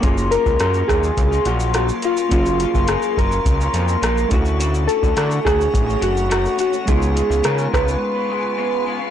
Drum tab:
HH |x-x-x-x-x-x-x-x-|x-x-x-x-x-x-x-x-|x-x-x-x-x-x-x-x-|x-x-x-x---------|
SH |xxxxxxxxxxxxxxxx|xxxxxxxxxxxxxxxx|xxxxxxxxxxxxxxxx|xxxxxxxx--------|
SD |----r-r-----r---|----r-------r---|----r-r-----r---|----r-r---------|
BD |o--o--o-o-------|o--o--o-o-----o-|---o--o-o-------|o-----o---------|